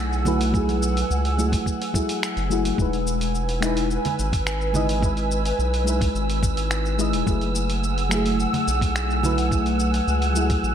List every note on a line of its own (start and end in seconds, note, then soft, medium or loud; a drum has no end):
0.00 1.04 B1 medium
0.00 0.25 F#3 medium
0.00 0.26 A3 medium
0.00 2.74 A3 medium
0.00 0.27 E4 medium
0.00 0.57 G#4 medium
0.00 2.75 F#5 medium
0.00 2.75 G#5 medium
0.00 2.74 E6 medium
0.13 shaker soft
0.25 0.50 F#3 medium
0.25 0.51 A3 medium
0.25 0.51 E4 medium
0.25 0.52 B4 loud
0.25 low conga loud
0.25 shaker medium
0.41 open hi-hat medium
0.41 shaker soft
0.52 1.34 F#3 medium
0.52 1.35 A3 medium
0.52 1.36 E4 medium
0.52 kick loud
0.52 shaker soft
0.57 1.37 G#4 medium
0.69 open hi-hat soft
0.69 high conga medium
0.69 shaker soft
0.83 shaker medium
0.97 open hi-hat medium
0.97 shaker soft
1.11 1.60 C#2 loud
1.11 shaker soft
1.25 open hi-hat soft
1.25 shaker soft
1.37 1.91 F#3 medium
1.37 1.92 A3 medium
1.37 1.92 E4 medium
1.37 1.93 G#4 medium
1.37 shaker medium
1.52 kick medium
1.52 open hi-hat medium
1.52 shaker soft
1.66 kick medium
1.66 shaker soft
1.82 open hi-hat soft
1.82 shaker soft
1.93 2.47 F#3 medium
1.93 2.47 A3 medium
1.93 2.48 E4 medium
1.93 2.48 G#4 medium
1.93 kick loud
1.93 high conga medium
1.93 shaker medium
2.09 open hi-hat medium
2.09 shaker soft
2.23 finger snap medium
2.23 shaker soft
2.37 2.72 F#1 medium
2.37 open hi-hat soft
2.37 shaker soft
2.50 2.75 F#3 medium
2.50 2.75 A3 medium
2.50 2.76 E4 medium
2.50 2.76 G#4 medium
2.50 shaker medium
2.65 open hi-hat medium
2.65 shaker soft
2.76 3.98 E1 loud
2.76 3.58 G#3 medium
2.76 3.59 D#4 medium
2.76 3.60 E4 medium
2.76 7.23 B4 medium
2.76 7.23 G#5 medium
2.76 10.75 E6 medium
2.76 kick loud
2.76 shaker soft
2.82 3.61 B4 medium
2.93 open hi-hat soft
2.93 shaker soft
3.07 shaker medium
3.21 open hi-hat medium
3.21 shaker soft
3.35 shaker soft
3.49 open hi-hat soft
3.49 shaker soft
3.60 4.70 G#3 medium
3.60 4.71 D#4 medium
3.60 4.72 E4 medium
3.60 finger snap medium
3.60 shaker medium
3.66 4.73 B4 medium
3.77 open hi-hat medium
3.77 shaker soft
3.91 shaker soft
4.05 open hi-hat soft
4.05 low conga loud
4.05 shaker soft
4.19 5.53 G#1 medium
4.19 shaker medium
4.33 kick loud
4.33 open hi-hat medium
4.33 shaker soft
4.47 finger snap medium
4.47 shaker soft
4.61 shaker soft
4.73 4.99 G#3 medium
4.73 4.99 D#4 medium
4.73 5.00 E4 medium
4.73 5.00 D#5 loud
4.73 low conga loud
4.73 shaker medium
4.89 open hi-hat medium
4.89 shaker soft
5.00 5.82 G#3 medium
5.00 5.83 D#4 medium
5.00 5.84 E4 medium
5.00 kick loud
5.00 shaker soft
5.06 5.85 B4 medium
5.17 open hi-hat soft
5.17 shaker soft
5.31 shaker medium
5.45 open hi-hat medium
5.45 shaker soft
5.59 6.08 B1 medium
5.59 shaker soft
5.74 open hi-hat soft
5.74 shaker soft
5.84 6.94 G#3 medium
5.84 6.95 D#4 medium
5.84 6.96 E4 medium
5.84 shaker medium
5.90 6.97 B4 medium
6.01 kick loud
6.01 open hi-hat medium
6.01 shaker soft
6.15 7.15 G#1 medium
6.15 shaker soft
6.30 open hi-hat soft
6.30 shaker soft
6.43 kick loud
6.43 shaker medium
6.57 open hi-hat medium
6.57 shaker soft
6.71 finger snap medium
6.71 shaker soft
6.86 shaker soft
6.98 7.23 G#3 medium
6.98 7.24 D#4 medium
6.98 7.24 E4 medium
6.98 7.25 D#5 loud
6.98 shaker medium
7.13 7.23 E1 medium
7.13 open hi-hat medium
7.13 shaker soft
7.25 8.47 F#1 medium
7.25 8.07 F#3 medium
7.25 10.75 A3 medium
7.25 8.08 A3 medium
7.25 8.09 E4 medium
7.25 10.75 F#5 medium
7.25 10.75 G#5 medium
7.25 9.49 E6 loud
7.25 kick loud
7.25 shaker soft
7.31 8.10 G#4 medium
7.41 open hi-hat soft
7.41 shaker soft
7.55 shaker medium
7.70 open hi-hat medium
7.70 shaker soft
7.84 shaker soft
7.98 open hi-hat soft
7.98 shaker soft
8.09 9.19 F#3 medium
8.09 9.20 A3 medium
8.09 9.21 E4 medium
8.09 finger snap medium
8.09 shaker medium
8.15 9.22 G#4 medium
8.26 open hi-hat medium
8.26 shaker soft
8.40 shaker soft
8.54 open hi-hat soft
8.54 low conga medium
8.54 shaker soft
8.68 10.01 B1 medium
8.68 shaker medium
8.81 kick loud
8.81 open hi-hat medium
8.81 shaker soft
8.96 finger snap medium
8.96 shaker medium
9.10 shaker soft
9.23 9.48 F#3 medium
9.23 9.49 A3 medium
9.23 9.49 E4 medium
9.23 9.50 B4 loud
9.23 low conga loud
9.23 shaker medium
9.38 open hi-hat medium
9.38 shaker soft
9.50 10.31 F#3 medium
9.50 10.32 A3 medium
9.50 10.33 E4 medium
9.50 10.75 F#6 loud
9.50 kick loud
9.50 shaker soft
9.55 10.34 G#4 medium
9.66 open hi-hat soft
9.66 shaker soft
9.80 shaker medium
9.94 open hi-hat soft
9.94 shaker soft
10.08 10.57 C#2 loud
10.08 shaker soft
10.22 open hi-hat soft
10.22 shaker soft
10.33 10.75 F#3 medium
10.33 10.75 A3 medium
10.33 10.75 E4 medium
10.33 shaker medium
10.39 10.75 G#4 medium
10.50 kick loud
10.50 open hi-hat medium
10.50 shaker soft
10.63 10.75 A1 medium
10.63 shaker soft